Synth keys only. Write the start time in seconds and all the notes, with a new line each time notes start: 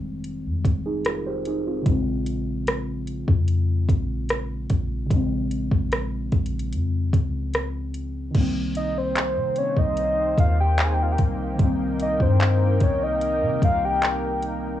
Already playing: D#3 G3 G#3 C4
0.86 D#4 G#4
1.07 F4 A#4
1.27 G4 C5
1.47 D#4 G#4
1.67 C4 F4
1.82 C#3 F3
1.88 G#3 C4
5.06 C#3 F3
5.13 G#3 C4
8.31 D#3 G3
8.37 A#3 C4
11.55 D#3 G3
11.62 A#3 C4